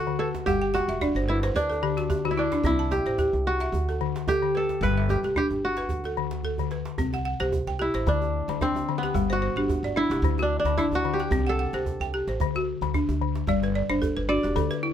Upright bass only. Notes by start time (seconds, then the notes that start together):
Already playing: D2
0.46 G1
0.88 E1
1.15 G1
1.55 D2
2.63 C2
3.06 A1
3.33 C2
3.72 D2
4.81 G1
5.23 E1
5.51 G1
5.90 D2
6.99 C2
7.40 C2
7.67 C2
7.94 A1
8.07 D2
8.48 D2
8.75 D2
9.14 G1
9.56 G1
9.83 G1
10.10 E1
10.22 D2
10.64 D2
10.92 D2
11.31 C2
11.73 C2
12.00 C2
12.27 A1
12.40 D2
12.81 D2
13.09 D2
13.47 G1
13.90 G1
14.17 G1
14.44 E1
14.56 D2